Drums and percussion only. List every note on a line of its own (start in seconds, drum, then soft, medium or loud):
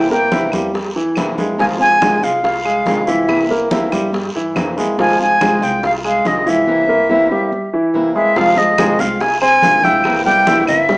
0.11 high bongo soft
0.11 high conga soft
0.32 high bongo soft
0.32 high conga loud
0.32 short guiro medium
0.52 high bongo soft
0.52 high conga medium
0.52 short guiro medium
0.52 claves medium
0.75 high bongo medium
0.75 high conga soft
0.75 long guiro medium
0.95 high conga soft
1.16 high bongo medium
1.16 low bongo medium
1.16 high conga medium
1.16 short guiro medium
1.16 claves medium
1.38 high bongo soft
1.38 high conga medium
1.38 short guiro medium
1.59 high bongo medium
1.59 high conga soft
1.59 long guiro medium
1.81 high conga soft
2.02 high bongo soft
2.02 high conga loud
2.02 short guiro medium
2.02 claves medium
2.23 high conga soft
2.23 short guiro medium
2.44 high bongo medium
2.44 high conga soft
2.44 long guiro medium
2.65 high conga soft
2.65 claves medium
2.86 high bongo medium
2.86 low bongo medium
2.86 high conga medium
2.86 short guiro medium
3.07 high conga soft
3.07 short guiro medium
3.28 high bongo medium
3.28 high conga soft
3.28 long guiro medium
3.28 claves medium
3.50 high bongo soft
3.50 high conga soft
3.71 high bongo medium
3.71 high conga loud
3.71 short guiro medium
3.92 high bongo soft
3.92 high conga medium
3.92 short guiro medium
3.92 claves medium
4.14 high bongo medium
4.14 high conga soft
4.14 long guiro medium
4.35 high conga soft
4.56 high bongo medium
4.56 low bongo medium
4.56 high conga medium
4.56 short guiro medium
4.56 claves medium
4.78 high bongo soft
4.78 short guiro medium
4.99 high bongo medium
4.99 high conga soft
4.99 long guiro medium
5.20 high conga soft
5.41 high bongo medium
5.41 high conga loud
5.41 short guiro medium
5.41 claves medium
5.62 high conga soft
5.62 short guiro medium
5.83 high bongo medium
5.83 high conga soft
5.83 long guiro medium
6.04 high conga soft
6.04 claves medium
6.25 high bongo medium
6.25 low bongo medium
6.25 high conga medium
6.25 short guiro medium
6.47 high conga soft
6.47 short guiro medium
8.36 high bongo medium
8.36 high conga soft
8.36 long guiro medium
8.57 high bongo soft
8.57 high conga soft
8.78 high bongo medium
8.78 high conga loud
8.78 short guiro medium
8.78 claves medium
8.99 short guiro medium
9.20 high bongo medium
9.20 high conga soft
9.20 long guiro medium
9.41 high bongo soft
9.41 high conga soft
9.41 claves medium
9.62 high bongo soft
9.62 low bongo medium
9.62 high conga medium
9.62 short guiro medium
9.83 high bongo soft
9.83 high conga medium
9.83 short guiro medium
10.04 high bongo medium
10.04 high conga soft
10.04 long guiro medium
10.04 claves medium
10.26 high bongo soft
10.26 high conga soft
10.47 high bongo medium
10.47 high conga loud
10.47 short guiro medium
10.67 high conga soft
10.67 low conga medium
10.67 short guiro medium
10.67 claves medium
10.89 high bongo medium
10.89 high conga soft
10.89 long guiro medium